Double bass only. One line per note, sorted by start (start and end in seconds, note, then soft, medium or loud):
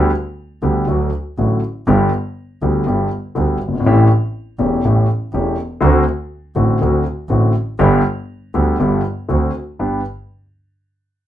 0.63 0.84 D2 medium
0.88 1.09 D2 medium
1.38 1.59 A1 medium
1.88 2.08 G1 medium
2.62 2.83 D2 medium
2.87 3.08 G1 medium
3.37 3.57 D2 medium
3.61 3.85 G1 soft
3.85 4.06 A1 medium
4.60 4.80 E1 medium
4.84 5.05 A1 medium
5.33 5.54 E1 medium
5.82 6.03 D2 medium
6.56 6.77 A1 medium
6.80 7.02 D2 medium
7.29 7.51 A1 medium
7.80 8.01 G1 loud
8.55 8.75 D2 medium
8.80 9.00 G1 medium
9.30 9.50 D2 medium
9.80 10.00 G1 medium